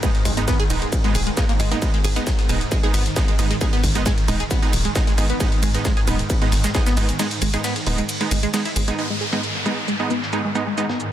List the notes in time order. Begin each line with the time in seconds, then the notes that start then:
Already playing: G#2 D#3
0.03 G#3 B3 D#4, kick, closed hi-hat, ride, shaker
0.15 snare, closed hi-hat
0.25 G#1 G#3, kick, open hi-hat, shaker
0.37 G#3 B3 D#4, closed hi-hat
0.48 B3, kick, snare, closed hi-hat, ride, shaker
0.60 G#4, snare, closed hi-hat
0.70 D#1 G#3 B3 D#4, open hi-hat, shaker
0.82 G#3, closed hi-hat
0.93 kick, closed hi-hat, ride, shaker
1.04 G#3 B3 D#4, closed hi-hat
1.15 D#1 G#4, open hi-hat, shaker
1.27 G#3, closed hi-hat
1.37 G#3 A#3 B3 D#4, kick, snare, closed hi-hat, ride, shaker
1.49 A#3, snare, closed hi-hat
1.60 G#1 G#3, open hi-hat, shaker
1.71 G#3 A#3 B3 D#4, closed hi-hat
1.82 G#3 B3 D#4, kick, closed hi-hat, ride, shaker
1.94 G#3, closed hi-hat
2.04 G#1 G#4, open hi-hat, shaker
2.16 G#3 B3 D#4, closed hi-hat
2.27 kick, snare, closed hi-hat, ride, shaker
2.39 snare, closed hi-hat
2.49 D#1 G#3 B3 D#4, open hi-hat, shaker
2.61 closed hi-hat
2.72 G#3, kick, closed hi-hat, ride, shaker
2.83 G#3 B3 D#4 G#4, closed hi-hat
2.94 G#1 B3, open hi-hat, shaker
3.06 snare, closed hi-hat
3.16 G#3 B3 D#4, kick, snare, closed hi-hat, ride, shaker
3.28 G#3, closed hi-hat
3.39 G#1 G#3 B3 D#4, open hi-hat, shaker
3.51 G#3, closed hi-hat
3.61 G#3 B3 D#4 G#4, kick, closed hi-hat, ride, shaker
3.73 B3, snare, closed hi-hat
3.84 G#1, kick, open hi-hat, shaker
3.95 G#3 B3 D#4, closed hi-hat
4.06 G#3, kick, snare, closed hi-hat, ride, shaker
4.18 snare, closed hi-hat
4.28 D#1 G#3 B3 D#4, open hi-hat, shaker
4.40 G#4, closed hi-hat
4.51 B3, kick, closed hi-hat, ride, shaker
4.62 G#3 B3 D#4, closed hi-hat
4.73 D#1, open hi-hat, shaker
4.85 G#3, closed hi-hat
4.96 G#3 B3 D#4, kick, snare, closed hi-hat, ride, shaker
5.07 G#3, snare, closed hi-hat
5.18 G#1 G#3 B3 D#4 G#4, open hi-hat, shaker
5.30 B3, closed hi-hat
5.40 G#3 B3 D#4, kick, closed hi-hat, ride, shaker
5.52 closed hi-hat
5.63 G#1 G#3, open hi-hat, shaker
5.74 G#3 B3 D#4, closed hi-hat
5.85 G#3, kick, snare, closed hi-hat, ride, shaker
5.97 G#4, snare, closed hi-hat
6.07 D#1 G#3 B3 D#4, open hi-hat, shaker
6.19 closed hi-hat
6.30 kick, closed hi-hat, ride, shaker
6.42 G#3 B3 D#4, closed hi-hat
6.52 G#1, snare, open hi-hat, shaker
6.64 G#3, snare, closed hi-hat, shaker
6.75 G#3 B3 D#4 G#4, kick, snare, closed hi-hat, ride, shaker
6.86 B3, snare, closed hi-hat, shaker
6.97 G#1 G#3 B3 D#4, open hi-hat, shaker
7.09 closed hi-hat
7.19 G#3 B3 D#4, snare, closed hi-hat, ride, shaker
7.31 snare, closed hi-hat
7.42 G#1 G#3, open hi-hat, shaker
7.54 G#3 B3 D#4 G#4, closed hi-hat
7.64 B3, snare, closed hi-hat, ride, shaker
7.76 snare, closed hi-hat
7.87 D#1 G#3 B3 D#4, open hi-hat
7.98 G#3, closed hi-hat
8.09 closed hi-hat, ride, shaker
8.21 G#3 B3 D#4, closed hi-hat
8.31 G#1 G#3, open hi-hat, shaker
8.43 G#3, closed hi-hat
8.54 G#3 B3 D#4, snare, closed hi-hat, ride, shaker
8.65 E4, snare, closed hi-hat
8.76 G#1 G#3, open hi-hat, shaker
8.88 G#3 B3 D#4, closed hi-hat
8.98 G#2 D#3 G#3 B3 D#4, downlifter, shaker
9.10 G#3
9.21 G#4, shaker
9.33 G#3 B3 D#4, closed hi-hat
9.43 shaker
9.55 snare
9.66 G#3 B3 D#4, shaker
9.88 G#3, shaker
10.00 G#3 B3 D#4 G#4
10.10 B3, shaker
10.22 snare
10.33 G#3 B3 D#4, shaker
10.45 G#3
10.55 G#3 B3 D#4, shaker
10.67 G#3
10.78 G#3 B3 D#4 G#4, shaker
10.89 B3, snare
11.00 shaker